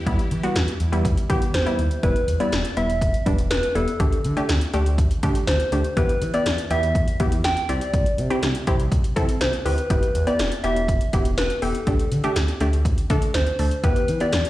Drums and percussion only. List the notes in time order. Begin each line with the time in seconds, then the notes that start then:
0.07 kick, closed hi-hat
0.19 closed hi-hat
0.31 closed hi-hat
0.43 closed hi-hat
0.56 snare, closed hi-hat
0.68 closed hi-hat
0.80 closed hi-hat
0.93 closed hi-hat
1.05 kick, closed hi-hat
1.17 closed hi-hat
1.30 kick, closed hi-hat
1.42 closed hi-hat
1.54 snare, closed hi-hat
1.67 closed hi-hat
1.79 closed hi-hat
1.91 closed hi-hat
2.03 kick, closed hi-hat
2.16 closed hi-hat
2.28 closed hi-hat
2.40 closed hi-hat
2.52 snare, closed hi-hat
2.65 closed hi-hat
2.77 closed hi-hat
2.90 closed hi-hat
3.01 kick, closed hi-hat
3.14 closed hi-hat
3.26 kick, closed hi-hat
3.38 closed hi-hat
3.51 snare, closed hi-hat
3.63 closed hi-hat
3.75 closed hi-hat
3.88 closed hi-hat
4.00 kick, closed hi-hat
4.12 closed hi-hat
4.25 closed hi-hat
4.37 closed hi-hat
4.49 snare, closed hi-hat
4.61 closed hi-hat
4.74 closed hi-hat
4.86 closed hi-hat
4.98 kick, closed hi-hat
5.11 closed hi-hat
5.23 kick, closed hi-hat
5.35 closed hi-hat
5.47 snare, closed hi-hat
5.60 closed hi-hat
5.72 closed hi-hat
5.84 closed hi-hat
5.97 kick, closed hi-hat
6.09 closed hi-hat
6.22 closed hi-hat
6.34 closed hi-hat
6.46 snare, closed hi-hat
6.58 closed hi-hat
6.71 closed hi-hat
6.83 closed hi-hat
6.95 kick, closed hi-hat
7.08 closed hi-hat
7.20 kick, closed hi-hat
7.32 closed hi-hat
7.44 snare, closed hi-hat
7.57 closed hi-hat
7.69 closed hi-hat
7.81 closed hi-hat
7.93 kick, closed hi-hat
8.06 closed hi-hat
8.18 closed hi-hat
8.30 closed hi-hat
8.43 snare, closed hi-hat
8.55 closed hi-hat
8.67 kick, closed hi-hat
8.80 closed hi-hat
8.92 kick, closed hi-hat
9.04 closed hi-hat
9.16 kick, closed hi-hat
9.29 closed hi-hat
9.41 snare, closed hi-hat
9.53 closed hi-hat
9.66 open hi-hat
9.78 closed hi-hat
9.90 kick, closed hi-hat
10.03 closed hi-hat
10.15 closed hi-hat
10.27 closed hi-hat
10.39 snare, closed hi-hat
10.52 closed hi-hat
10.64 closed hi-hat
10.76 closed hi-hat
10.88 kick, closed hi-hat
11.01 closed hi-hat
11.13 kick, closed hi-hat
11.25 closed hi-hat
11.38 snare, closed hi-hat
11.50 closed hi-hat
11.62 open hi-hat
11.75 closed hi-hat
11.87 kick, closed hi-hat
11.99 closed hi-hat
12.12 closed hi-hat
12.24 closed hi-hat
12.36 snare, closed hi-hat
12.48 closed hi-hat
12.60 closed hi-hat
12.73 closed hi-hat
12.85 kick, closed hi-hat
12.98 closed hi-hat
13.10 kick, closed hi-hat
13.22 closed hi-hat
13.34 snare, closed hi-hat
13.47 closed hi-hat
13.59 open hi-hat
13.71 closed hi-hat
13.84 kick, closed hi-hat
13.96 closed hi-hat
14.08 closed hi-hat
14.20 closed hi-hat
14.32 snare, closed hi-hat
14.45 closed hi-hat